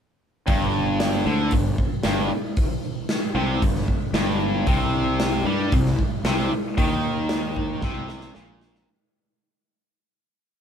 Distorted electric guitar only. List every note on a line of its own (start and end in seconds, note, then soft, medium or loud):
0.47 1.25 G2 medium
1.26 1.51 D3 medium
1.53 1.73 G2 medium
2.05 2.30 G2 medium
3.35 3.61 C3 medium
3.62 3.83 G2 medium
4.14 4.66 G2 medium
4.67 5.45 C3 loud
5.46 5.71 G3 loud
5.74 5.94 C3 medium
6.26 6.51 C3 medium
6.78 7.82 D#3 loud
7.83 8.34 C3 medium
8.35 8.86 A#2 medium